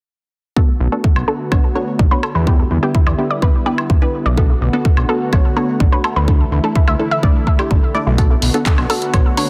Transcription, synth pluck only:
0.56 B3 D4 F#4 A4
0.92 B3 D4 F#4 A4
1.28 B3 D4 F#4 A4
1.52 B3 D4 F#4 C#5
1.75 B3 D4 F#4 C#5
2.11 B3 D4 F#4 C#5
2.47 B3 D4 E4 G4
2.83 B3 D4 E4 G4
3.19 B3 D4 E4 G4
3.42 B3 D4 E4 B4
3.66 B3 D4 E4 B4
4.02 B3 D4 E4 B4
4.38 B3 D4 F#4 A4
4.73 B3 D4 F#4 A4
5.09 B3 D4 F#4 A4
5.33 B3 D4 F#4 C#5
5.57 B3 D4 F#4 C#5
5.92 B3 D4 F#4 C#5
6.28 A3 D4 E4 A4
6.64 A3 D4 E4 A4
6.99 A3 D4 E4 A4
7.23 A3 D4 E4 D5
7.59 A3 D4 E4 G4
7.95 A3 D4 E4 D5
8.18 B3 D4 F#4 A4
8.54 B3 D4 F#4 A4
8.90 B3 D4 F#4 A4
9.14 B3 D4 F#4 C#5
9.37 B3 D4 F#4 C#5

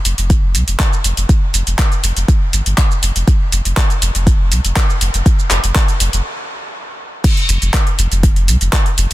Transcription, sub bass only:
0.05 F1
0.18 F1
0.55 C2
0.68 F1
1.04 F1
1.17 F1
1.54 F1
1.67 F1
2.04 F1
2.16 F1
2.53 G1
2.66 G1
3.03 F1
3.16 F1
3.52 F1
3.65 F1
4.02 F1
4.15 F1
4.51 C2
4.64 F1
5.01 F1
5.14 F1
5.51 F1
5.64 F1
6.00 F1
6.13 F1
7.49 F1
7.62 F1
7.99 F1
8.12 F1
8.48 C2
8.61 F1
8.98 F1

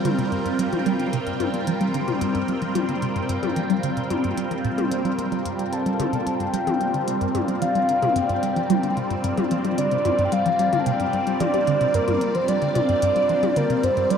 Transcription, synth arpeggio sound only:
0.05 D3
0.19 C3
0.32 G2
0.46 G2
0.59 G3
0.73 F3
0.86 G3
1.00 D3
1.13 C3
1.27 G2
1.40 G2
1.54 G3
1.67 F3
1.81 G3
1.94 D3
2.08 C3
2.21 G2
2.35 G2
2.49 G3
2.62 F3
2.75 G3
2.89 D3
3.02 C3
3.16 G2
3.29 G2
3.43 G3
3.56 F3
3.70 G3
3.84 D3
3.97 C3
4.11 G2
4.24 G2
4.37 G3
4.51 F3
4.65 A#2
4.78 A#3
4.92 G3
5.05 G3
5.19 A#3
5.32 G3
5.45 G2
5.59 G3
5.73 F3
5.86 G3
6.00 D3
6.13 C3
6.27 G2
6.40 G2
6.54 G3
6.67 F3
6.81 G3
6.94 D3
7.08 C3
7.21 G2
7.35 G2
7.48 G3
7.62 F3
7.75 G3
7.89 D3
8.02 C3
8.16 G2
8.29 G2
8.43 G3
8.56 F3
8.70 G3
8.84 D3
8.97 C3
9.11 G2
9.24 G2
9.38 G3
9.51 F3
9.65 G3
9.78 D3
9.92 C3
10.05 G2
10.19 G2
10.32 G3
10.46 F3
10.59 G3
10.73 D3
10.86 C3
11.00 G2
11.13 G2
11.27 G3
11.41 F3
11.54 G3
11.68 D3
11.81 C3
11.94 G2
12.08 G2
12.22 G3
12.35 F3
12.49 G3
12.62 D3
12.76 C3
12.89 G2
13.03 G2
13.16 G3
13.30 F3
13.43 G3
13.57 D3
13.70 C3
13.84 G2
13.97 G2
14.11 G3

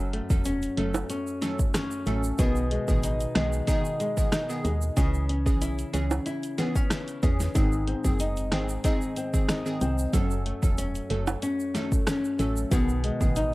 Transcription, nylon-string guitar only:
Already playing: F#2
0.13 A3
0.45 C#4
0.78 A3
1.10 C#4
1.42 A3
1.75 C#4
2.07 A3
2.39 B2
2.71 G#3
3.04 D#4
3.36 G#3
3.68 D#4
4.00 G#3
4.32 D#4
4.64 G#3
4.97 C#3
5.29 C#4
5.62 E4
5.94 C#4
6.26 E4
6.58 B3
6.75 C#4
6.91 E4
7.23 C#4
7.56 G#2
7.88 C4
8.20 D#4
8.52 C4
8.85 D#4
9.17 C4
9.49 D#4
9.81 C4
10.14 F#2
10.46 A3
10.78 C#4
11.10 A3
11.43 C#4
11.75 A3
12.07 C#4
12.40 A3
12.72 B2
13.04 G#3
13.36 D#4

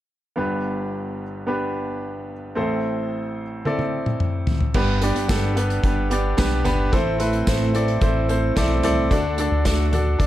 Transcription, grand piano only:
0.36 G1 G2 B3 D4 G4 B4
1.47 B3 D4 G4 B4
2.55 A1 A2 C4 E4 A4 C5
3.65 C4 E4 A4 D5
4.75 G2 B3 D4 G4 B4
5.01 B3 D4 G4 D5
5.28 B3 D4 G4 A4
5.56 B3 D4 G4 B4
5.83 B3 D4 G4 B4
6.11 B3 D4 G4 D5
6.37 B3 D4 G4 B4
6.64 B3 D4 G4 B4
6.92 A2 C4 E4 A4 C5
7.18 C4 E4 A4 B4
7.46 C4 E4 A4 C5
7.74 C4 E4 A4 D5
8.01 C4 E4 A4 C5
8.29 C4 E4 A4 C5
8.56 C4 E4 A4 D5
8.83 C4 E4 A4 D5
9.11 D3 D4 F#4 A4 D5
9.39 D4 F#4 A4 D5
9.65 D4 F#4 A4 D5
9.92 D4 F#4 A4 D5
10.18 D4 F#4 A4 D5

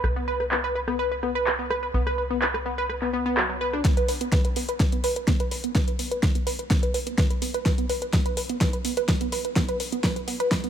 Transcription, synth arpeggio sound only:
0.04 B4
0.16 B3
0.28 B4
0.40 B4
0.52 B3
0.64 B4
0.75 B4
0.88 B3
0.99 B4
1.12 B4
1.23 B3
1.35 B4
1.47 B4
1.59 B3
1.70 B4
1.83 B4
1.94 B3
2.07 B4
2.18 B4
2.31 B3
2.42 B4
2.54 B4
2.66 B3
2.78 B4
2.90 B4
3.02 B3
3.13 B3
3.26 B3
3.37 F#3
3.50 F#3
3.61 B4
3.73 D4
3.85 B3
3.97 B4
4.09 B4
4.21 B3
4.32 B4
4.45 B4
4.56 B3
4.69 B4
4.80 B4
4.93 B3
5.04 B4
5.16 B4
5.28 B3
5.40 B4
5.52 B4
5.64 B3
5.75 B4
5.88 B4
5.99 B3
6.11 B4
6.23 B4
6.35 B3
6.47 B4
6.59 B4
6.70 B3
6.83 B4
6.94 B4
7.07 B3
7.18 B4
7.30 B4
7.42 B3
7.54 B4
7.66 B4
7.78 B3
7.90 B4
8.02 B4
8.13 B3
8.26 B4
8.37 B4
8.50 B3
8.61 B4
8.73 B4
8.85 B3
8.97 B4
9.09 B4
9.21 B3
9.32 B4
9.45 B4
9.56 B3
9.69 B4
9.80 B4
9.92 B3
10.04 B4
10.16 B4
10.28 B3
10.40 B4
10.51 B4
10.64 B3

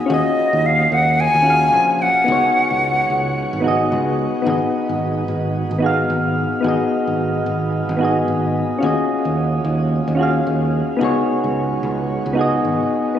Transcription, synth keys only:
Already playing: B3 D#4 F#4 G#4 D#5
0.06 C#4 F4 F#4
0.12 G#4 D#5
1.42 C#4 F4 F#4
1.48 G#4 F5
2.24 B3 D#4 F#4
2.30 G#4 C#5
3.60 B3 D#4 F#4
3.66 G#4 D#5
4.42 B3 D#4 F#4
4.48 G#4 D#5
5.78 B3 D#4 F#4
5.84 G#4 F5
6.61 B3 D#4 F#4
6.66 G#4 D#5
7.97 B3 D#4 F#4
8.03 G#4 D#5
8.78 C#4 F4 F#4
8.84 G#4 D#5
10.15 C#4 F4 F#4
10.21 G#4 F5
10.97 B3 D#4 F#4
11.02 G#4 C#5
12.33 B3 D#4 F#4
12.39 G#4 D#5
13.15 B3

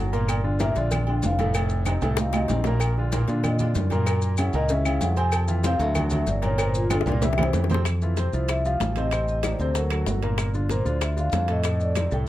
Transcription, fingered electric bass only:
Already playing: G1
0.76 A#1
1.23 F1
2.02 C2
2.50 A#1
3.28 A#2
3.75 F#2
4.54 C#2
5.01 F2
5.79 D2
6.27 G1
7.06 C2
7.53 F2
8.33 C2
8.80 A1
9.59 D2
10.07 G1
10.86 D2
11.33 F2
12.12 C2

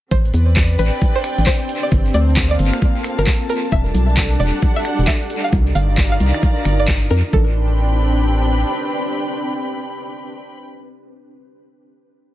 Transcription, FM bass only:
0.11 A1
0.34 E2
0.79 A1
1.38 A1
1.92 G1
2.14 D2
2.59 G1
3.19 G1
3.72 E1
3.95 B1
4.40 E1
4.99 E1
5.53 C2
5.75 G1
6.20 C2
6.65 G1
7.11 F2
7.33 A1

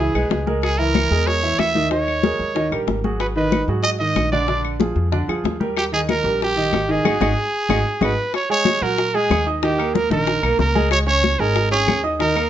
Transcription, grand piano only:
Already playing: E3
0.00 E4 E5
0.15 G#3 G#4 B4
0.46 G#3 G#4 A#4
0.79 E3 E4 E5
0.94 E3 E4 E5
1.11 G#3 G#4 A#4
1.43 E3 E4 E5
1.75 D#3 D#4 D#5
1.91 D#3 D#4 D#5
2.23 G#3 G#4 A#4
2.55 D#3 D#4 D#5
2.72 G3 G4 A#4
3.04 F#3 F#4 G#4
3.36 D#3 D#4 D#5
3.52 D#3 D#4 D#5
3.68 F#3 F#4 G#4
4.00 D#3 D#4 D#5
4.32 D3 D4 D5
4.48 D3 D4 D5
4.80 F3 F4 G#4
5.12 D3 D4 D5
5.28 F3 F4 G#4
5.60 G3 G4 A#4
5.92 D#3 D#4 D#5
6.09 D#3 D#4 D#5
6.24 G3 G4 A#4
6.56 D#3 D#4 D#5
6.88 D#3 D#4 D#5
7.05 D#4 F#4 G#4
7.21 D#4 F#4 G#4
7.69 D#4 F#4 G#4
8.01 D#4 F#4 G#4
8.49 G#3 G#4 G#5
8.82 F#3 F#4 F#5
9.14 G#3 G#4 G#5
9.46 D#4 D#5 D#6
9.62 D#3 D#4 D#5
9.78 A#3 A#4 A#5
10.10 D#3 D#4 D#5
10.43 A#3 A#4 A#5
10.75 G#3 G#4 G#5
11.06 C#4 C#5 C#6
11.40 G#3 G#4 G#5
11.71 C#4 C#5 C#6
12.03 D#4 D#5 D#6
12.19 D#3 D#4 D#5
12.36 A#3 A#4 A#5

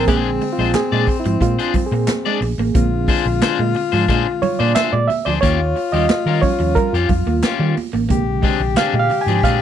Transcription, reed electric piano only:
0.07 D3 G#3 C4 G#4
0.53 F4
0.75 G#4
1.20 E4
1.42 F4
1.86 G#4
2.74 D3 G#3 C4
4.42 C#5
4.59 D5
4.75 E5
4.93 D5
5.08 E5
5.25 D5
5.41 C#5
5.92 D#5
6.42 F3 G3 C#4 C#5
6.75 A#4
6.93 F4
8.09 C3 D3 G#3
8.77 F5
8.99 F5
9.21 G#5
9.44 F5

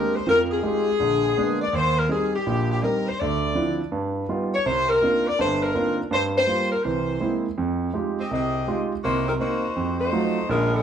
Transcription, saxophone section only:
Already playing: A#4
0.16 C5
0.29 A#4
0.52 G#4
1.62 D5
1.75 C5
1.98 A#4
2.11 G#4
2.36 G4
2.71 G4
2.81 G#4 A#4
3.07 C5
3.19 D5
4.54 C#5
4.66 C5
4.90 A#4
5.27 D5
5.40 C5
5.63 A#4
6.13 C5
6.37 C5
6.72 A#4
6.84 C5
8.20 C4 G4 G#4 D#5
8.33 C4 G4 G#4 D#5
9.04 A#3 D#4 F#4 C5
9.28 F#3 C4 D#4 A#4
9.40 A#3 D#4 F#4 C5
9.99 A3 D#4 F#4 C5
10.50 G#3 C#4 F4 A#4
10.74 G#3 C#4 F4 A#4

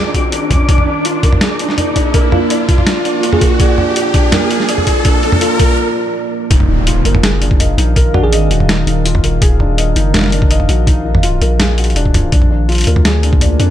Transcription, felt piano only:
Already playing: D4 D#4 F4 F#4 G#4 A#4 D#5
0.14 F#4
0.32 D4
0.51 F4
0.69 D4
0.87 D4
1.05 F4
1.23 A#4
1.41 G#4
1.59 D4
1.77 D5
1.96 D4
2.14 A#4
2.32 D4
2.50 D5
2.69 F4
2.86 D4
3.05 D4
3.23 F4
3.41 A#4
3.60 G#4
3.78 D4
3.96 D5
4.14 D4
4.32 A#4
4.50 D4
4.69 D5
4.87 F4
5.05 D4
5.23 D4
5.41 F4
5.59 A#4
6.50 D#4
6.69 D#4
6.87 F4
7.05 A#4
7.23 G#4
7.41 D4
7.59 D#5
7.78 D#4
7.96 A#4
8.14 D4
8.32 D#5
8.51 F#4
8.69 D#4
8.87 D#4
9.05 F4
9.23 A#4
9.42 G#4
9.60 D4
9.78 D#5
9.96 D#4
10.14 A#4
10.32 D4
10.50 D#5
10.69 F#4
10.87 D#4
11.05 D#4
11.23 F4
11.41 A#4
11.60 G#4
11.78 F#4
11.96 D4
12.14 F4
12.32 D4
12.51 D4
12.68 F4
12.87 A#4
13.05 G#4
13.23 D4
13.41 D5
13.60 D4

